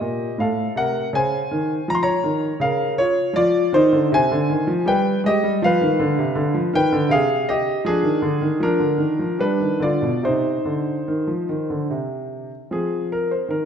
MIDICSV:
0, 0, Header, 1, 2, 480
1, 0, Start_track
1, 0, Tempo, 738007
1, 735, Time_signature, 3, 2, 24, 8
1, 1687, Tempo, 764331
1, 2647, Tempo, 747198
1, 5527, Tempo, 788436
1, 6007, Tempo, 836820
1, 7447, Tempo, 792602
1, 8505, End_track
2, 0, Start_track
2, 0, Title_t, "Grand piano"
2, 0, Program_c, 0, 0
2, 0, Note_on_c, 0, 67, 61
2, 0, Note_on_c, 0, 75, 85
2, 5, Note_on_c, 0, 46, 63
2, 181, Note_off_c, 0, 46, 0
2, 231, Note_off_c, 0, 67, 0
2, 248, Note_on_c, 0, 45, 65
2, 253, Note_off_c, 0, 75, 0
2, 261, Note_on_c, 0, 77, 78
2, 268, Note_on_c, 0, 69, 67
2, 424, Note_off_c, 0, 45, 0
2, 463, Note_off_c, 0, 77, 0
2, 486, Note_off_c, 0, 69, 0
2, 493, Note_on_c, 0, 48, 66
2, 503, Note_on_c, 0, 78, 97
2, 509, Note_on_c, 0, 70, 67
2, 667, Note_off_c, 0, 48, 0
2, 704, Note_off_c, 0, 78, 0
2, 726, Note_off_c, 0, 70, 0
2, 735, Note_on_c, 0, 49, 71
2, 750, Note_on_c, 0, 80, 98
2, 757, Note_on_c, 0, 72, 74
2, 907, Note_off_c, 0, 49, 0
2, 984, Note_on_c, 0, 51, 66
2, 1152, Note_off_c, 0, 51, 0
2, 1197, Note_off_c, 0, 72, 0
2, 1219, Note_off_c, 0, 80, 0
2, 1223, Note_on_c, 0, 53, 73
2, 1236, Note_on_c, 0, 82, 103
2, 1267, Note_off_c, 0, 82, 0
2, 1267, Note_on_c, 0, 84, 90
2, 1304, Note_off_c, 0, 84, 0
2, 1319, Note_on_c, 0, 82, 97
2, 1324, Note_on_c, 0, 73, 76
2, 1390, Note_off_c, 0, 53, 0
2, 1455, Note_on_c, 0, 51, 68
2, 1625, Note_off_c, 0, 51, 0
2, 1641, Note_off_c, 0, 82, 0
2, 1674, Note_off_c, 0, 73, 0
2, 1689, Note_on_c, 0, 49, 66
2, 1700, Note_on_c, 0, 77, 94
2, 1709, Note_on_c, 0, 70, 70
2, 1892, Note_off_c, 0, 77, 0
2, 1916, Note_off_c, 0, 70, 0
2, 1931, Note_on_c, 0, 73, 101
2, 1942, Note_on_c, 0, 65, 69
2, 2027, Note_off_c, 0, 49, 0
2, 2152, Note_off_c, 0, 65, 0
2, 2152, Note_on_c, 0, 53, 78
2, 2162, Note_off_c, 0, 73, 0
2, 2168, Note_on_c, 0, 74, 109
2, 2173, Note_on_c, 0, 65, 77
2, 2330, Note_off_c, 0, 53, 0
2, 2393, Note_off_c, 0, 65, 0
2, 2398, Note_on_c, 0, 51, 77
2, 2407, Note_off_c, 0, 74, 0
2, 2408, Note_on_c, 0, 72, 109
2, 2416, Note_on_c, 0, 63, 83
2, 2518, Note_off_c, 0, 51, 0
2, 2524, Note_on_c, 0, 50, 72
2, 2613, Note_off_c, 0, 72, 0
2, 2637, Note_off_c, 0, 63, 0
2, 2640, Note_off_c, 0, 50, 0
2, 2645, Note_on_c, 0, 48, 77
2, 2659, Note_on_c, 0, 80, 111
2, 2665, Note_on_c, 0, 72, 82
2, 2761, Note_off_c, 0, 48, 0
2, 2770, Note_on_c, 0, 50, 81
2, 2882, Note_off_c, 0, 50, 0
2, 2887, Note_on_c, 0, 51, 74
2, 2999, Note_off_c, 0, 51, 0
2, 3000, Note_on_c, 0, 53, 83
2, 3107, Note_off_c, 0, 72, 0
2, 3115, Note_off_c, 0, 53, 0
2, 3119, Note_on_c, 0, 55, 77
2, 3129, Note_off_c, 0, 80, 0
2, 3131, Note_on_c, 0, 79, 102
2, 3138, Note_on_c, 0, 71, 76
2, 3293, Note_off_c, 0, 55, 0
2, 3332, Note_off_c, 0, 79, 0
2, 3355, Note_off_c, 0, 71, 0
2, 3364, Note_on_c, 0, 56, 77
2, 3379, Note_on_c, 0, 75, 109
2, 3386, Note_on_c, 0, 67, 78
2, 3479, Note_off_c, 0, 56, 0
2, 3489, Note_on_c, 0, 55, 73
2, 3577, Note_off_c, 0, 75, 0
2, 3599, Note_off_c, 0, 67, 0
2, 3600, Note_off_c, 0, 55, 0
2, 3611, Note_on_c, 0, 53, 89
2, 3624, Note_on_c, 0, 77, 102
2, 3633, Note_on_c, 0, 71, 83
2, 3721, Note_off_c, 0, 53, 0
2, 3733, Note_on_c, 0, 51, 83
2, 3842, Note_off_c, 0, 51, 0
2, 3850, Note_on_c, 0, 50, 86
2, 3960, Note_off_c, 0, 50, 0
2, 3972, Note_on_c, 0, 48, 71
2, 4080, Note_on_c, 0, 50, 83
2, 4081, Note_off_c, 0, 48, 0
2, 4195, Note_off_c, 0, 50, 0
2, 4202, Note_on_c, 0, 53, 76
2, 4225, Note_off_c, 0, 77, 0
2, 4310, Note_off_c, 0, 71, 0
2, 4316, Note_off_c, 0, 53, 0
2, 4325, Note_on_c, 0, 51, 83
2, 4338, Note_on_c, 0, 79, 118
2, 4345, Note_on_c, 0, 71, 82
2, 4436, Note_off_c, 0, 51, 0
2, 4446, Note_on_c, 0, 50, 87
2, 4554, Note_on_c, 0, 48, 78
2, 4555, Note_off_c, 0, 71, 0
2, 4556, Note_off_c, 0, 50, 0
2, 4567, Note_off_c, 0, 79, 0
2, 4568, Note_on_c, 0, 77, 107
2, 4575, Note_on_c, 0, 68, 87
2, 4788, Note_off_c, 0, 68, 0
2, 4800, Note_off_c, 0, 77, 0
2, 4808, Note_on_c, 0, 75, 99
2, 4817, Note_on_c, 0, 67, 84
2, 4898, Note_off_c, 0, 48, 0
2, 5006, Note_off_c, 0, 75, 0
2, 5029, Note_off_c, 0, 67, 0
2, 5039, Note_on_c, 0, 53, 80
2, 5050, Note_on_c, 0, 68, 99
2, 5058, Note_on_c, 0, 62, 80
2, 5152, Note_off_c, 0, 53, 0
2, 5157, Note_on_c, 0, 51, 74
2, 5273, Note_off_c, 0, 51, 0
2, 5279, Note_on_c, 0, 50, 80
2, 5396, Note_off_c, 0, 50, 0
2, 5403, Note_on_c, 0, 51, 73
2, 5512, Note_off_c, 0, 62, 0
2, 5520, Note_off_c, 0, 51, 0
2, 5525, Note_on_c, 0, 53, 77
2, 5533, Note_off_c, 0, 68, 0
2, 5541, Note_on_c, 0, 70, 101
2, 5546, Note_on_c, 0, 62, 74
2, 5638, Note_off_c, 0, 53, 0
2, 5644, Note_on_c, 0, 50, 70
2, 5756, Note_on_c, 0, 51, 73
2, 5758, Note_off_c, 0, 50, 0
2, 5874, Note_off_c, 0, 51, 0
2, 5884, Note_on_c, 0, 53, 69
2, 5992, Note_off_c, 0, 62, 0
2, 6000, Note_off_c, 0, 53, 0
2, 6005, Note_on_c, 0, 55, 68
2, 6013, Note_off_c, 0, 70, 0
2, 6013, Note_on_c, 0, 71, 91
2, 6023, Note_on_c, 0, 62, 64
2, 6116, Note_off_c, 0, 55, 0
2, 6125, Note_on_c, 0, 51, 60
2, 6234, Note_off_c, 0, 62, 0
2, 6237, Note_off_c, 0, 51, 0
2, 6239, Note_on_c, 0, 50, 69
2, 6245, Note_off_c, 0, 71, 0
2, 6254, Note_on_c, 0, 74, 88
2, 6258, Note_on_c, 0, 65, 70
2, 6355, Note_off_c, 0, 50, 0
2, 6366, Note_on_c, 0, 47, 60
2, 6476, Note_off_c, 0, 65, 0
2, 6480, Note_off_c, 0, 47, 0
2, 6487, Note_on_c, 0, 48, 65
2, 6490, Note_off_c, 0, 74, 0
2, 6497, Note_on_c, 0, 72, 93
2, 6504, Note_on_c, 0, 63, 68
2, 6661, Note_off_c, 0, 48, 0
2, 6729, Note_on_c, 0, 50, 63
2, 6902, Note_off_c, 0, 50, 0
2, 6973, Note_on_c, 0, 51, 65
2, 7085, Note_on_c, 0, 53, 63
2, 7086, Note_off_c, 0, 51, 0
2, 7202, Note_off_c, 0, 53, 0
2, 7209, Note_on_c, 0, 51, 64
2, 7323, Note_off_c, 0, 51, 0
2, 7329, Note_on_c, 0, 50, 60
2, 7433, Note_off_c, 0, 63, 0
2, 7440, Note_off_c, 0, 50, 0
2, 7447, Note_on_c, 0, 48, 57
2, 7453, Note_off_c, 0, 72, 0
2, 7798, Note_off_c, 0, 48, 0
2, 7933, Note_on_c, 0, 60, 36
2, 7935, Note_on_c, 0, 53, 62
2, 7944, Note_on_c, 0, 68, 74
2, 8142, Note_off_c, 0, 68, 0
2, 8185, Note_on_c, 0, 70, 79
2, 8276, Note_off_c, 0, 53, 0
2, 8297, Note_off_c, 0, 70, 0
2, 8300, Note_on_c, 0, 72, 67
2, 8404, Note_on_c, 0, 51, 58
2, 8413, Note_off_c, 0, 72, 0
2, 8416, Note_on_c, 0, 70, 74
2, 8505, Note_off_c, 0, 51, 0
2, 8505, Note_off_c, 0, 60, 0
2, 8505, Note_off_c, 0, 70, 0
2, 8505, End_track
0, 0, End_of_file